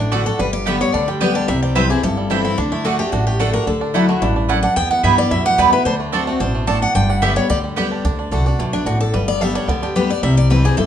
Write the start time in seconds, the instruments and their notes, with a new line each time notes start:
Already playing: upright bass A1, steel-string acoustic guitar A2
0.00 five-string banjo D4, steel-string acoustic guitar D4
0.12 steel-string acoustic guitar D3 A3 D4 F#4, mandolin A3 F#4 D5 F#5, five-string banjo D4
0.26 five-string banjo D4, steel-string acoustic guitar D4 F#4 A4
0.39 upright bass G1, steel-string acoustic guitar G2 B4, five-string banjo G3
0.53 steel-string acoustic guitar D5
0.66 steel-string acoustic guitar D3 G3 B3 G4 E5, mandolin B3 G4 D5 G5, five-string banjo B3
0.80 five-string banjo G3, steel-string acoustic guitar B3 G4 C#5
0.93 upright bass D2, steel-string acoustic guitar D3 D5, five-string banjo D4
1.08 five-string banjo G3, steel-string acoustic guitar G4
1.20 steel-string acoustic guitar D3 G3 B3 G4 B4, mandolin B3 G4 D5 G5, five-string banjo G4
1.35 five-string banjo D4, steel-string acoustic guitar D5
1.48 upright bass C2, steel-string acoustic guitar C3 E5, five-string banjo G3
1.62 five-string banjo C4, steel-string acoustic guitar D5
1.75 steel-string acoustic guitar E3 G3 C4 E4 B4, mandolin C4 E4 C5 G5, five-string banjo E4
1.90 steel-string acoustic guitar C4 E4 G#4, five-string banjo G4
2.03 upright bass G1, steel-string acoustic guitar G2 A4, five-string banjo E4
2.17 five-string banjo G3
2.30 steel-string acoustic guitar E3 G3 C4 E4, mandolin C4 E4 C5 G5, five-string banjo E4
2.45 five-string banjo C4, steel-string acoustic guitar E4
2.58 upright bass D2, steel-string acoustic guitar D3 D4, five-string banjo D4
2.72 five-string banjo A3, steel-string acoustic guitar E4
2.84 steel-string acoustic guitar D3 A3 D4 F#4, mandolin A3 F#4 D5 F#5, five-string banjo D4
2.99 five-string banjo A3, steel-string acoustic guitar D4 F#4 G4
3.12 upright bass A1, steel-string acoustic guitar A2 F#4, five-string banjo D4
3.27 five-string banjo A3, steel-string acoustic guitar G4
3.39 steel-string acoustic guitar D3 A3 D4 F#4 A4, mandolin A3 F#4 D5 F#5, five-string banjo D4
3.53 five-string banjo D4, steel-string acoustic guitar D4 F#4 A#4
3.67 upright bass D2, steel-string acoustic guitar D3 A4, five-string banjo D4
3.81 five-string banjo D4
3.94 steel-string acoustic guitar F#3 A3 E4 F#4, mandolin A3 E4 D5 F#5, five-string banjo D4
4.09 five-string banjo A3, steel-string acoustic guitar E4 F#4
4.22 upright bass A1, steel-string acoustic guitar G2, five-string banjo D4, resonator guitar played with a steel bar E4
4.36 five-string banjo D4
4.49 steel-string acoustic guitar F#2, mandolin A3 E4 D5 F#5, five-string banjo D4
4.63 five-string banjo D4, steel-string acoustic guitar F#5
4.76 upright bass E2, steel-string acoustic guitar E2 G5, five-string banjo B3
4.91 five-string banjo E4, steel-string acoustic guitar F#5
5.03 upright bass G2, steel-string acoustic guitar E3 G3 B3 E4 E5, mandolin B3 E4 B4 G5, five-string banjo B3
5.17 five-string banjo G3, steel-string acoustic guitar B3 E4 D5
5.31 upright bass F#2, steel-string acoustic guitar B2 E5, five-string banjo E4
5.45 five-string banjo G4, steel-string acoustic guitar F#5
5.58 upright bass E2, steel-string acoustic guitar E3 G3 B3 E4 D5, mandolin B3 E4 B4 G5, five-string banjo B3
5.72 steel-string acoustic guitar B3 E4 B4, five-string banjo E4
5.85 upright bass D2, steel-string acoustic guitar D3 C5, five-string banjo D4
6.00 five-string banjo A3
6.12 steel-string acoustic guitar D3 A3 C4 F#4, mandolin C4 F#4 D5 A5, five-string banjo D4
6.27 five-string banjo A3, steel-string acoustic guitar C4 F#4
6.40 upright bass A1, steel-string acoustic guitar B2 C5, five-string banjo D4
6.55 five-string banjo A3
6.67 steel-string acoustic guitar A2 A5, mandolin C4 F#4 D5 A5, five-string banjo D4
6.82 five-string banjo D4, steel-string acoustic guitar F#5
6.95 upright bass G1, steel-string acoustic guitar G2 G5, five-string banjo D4
7.09 five-string banjo G3, steel-string acoustic guitar F#5
7.22 steel-string acoustic guitar D3 G3 B3 G4 E5, mandolin B3 G4 D5 G5, five-string banjo G4
7.36 five-string banjo G3, steel-string acoustic guitar B3 G4 C#5
7.50 upright bass D2, steel-string acoustic guitar D3 D5, five-string banjo G4
7.64 five-string banjo G3
7.76 steel-string acoustic guitar D3 G3 B3 G4, mandolin B3 G4 D5 G5, five-string banjo G4
7.92 five-string banjo D4
8.04 upright bass D2, steel-string acoustic guitar D3, five-string banjo D4
8.19 five-string banjo D4
8.31 upright bass C2, steel-string acoustic guitar D3 A3 D4 F#4, five-string banjo D4
8.46 five-string banjo D4, steel-string acoustic guitar D4 F#4
8.59 upright bass B1, steel-string acoustic guitar B2, five-string banjo A3
8.73 steel-string acoustic guitar D4, five-string banjo D4
8.86 upright bass A1, steel-string acoustic guitar A2 F#4, five-string banjo D4
9.00 five-string banjo D4, steel-string acoustic guitar A4
9.14 upright bass G1, steel-string acoustic guitar G2 B4, five-string banjo G3
9.28 five-string banjo B3, steel-string acoustic guitar D5
9.41 steel-string acoustic guitar D3 G3 B3 G4 E5, five-string banjo D4
9.55 five-string banjo G3, steel-string acoustic guitar B3 G4 C#5
9.68 upright bass D2, steel-string acoustic guitar D3 D5, five-string banjo B3
9.83 five-string banjo D4, steel-string acoustic guitar G4
9.95 steel-string acoustic guitar D3 G3 B3 G4 B4, five-string banjo G4
10.10 five-string banjo G3, steel-string acoustic guitar B3 G4 D5
10.23 upright bass C2, steel-string acoustic guitar C3 E5, five-string banjo G3
10.37 steel-string acoustic guitar D5
10.50 steel-string acoustic guitar E3 G3 C4 E4 B4, five-string banjo C4
10.64 steel-string acoustic guitar C4 E4 G#4, five-string banjo G4
10.77 upright bass G1, steel-string acoustic guitar G2 A4, five-string banjo E4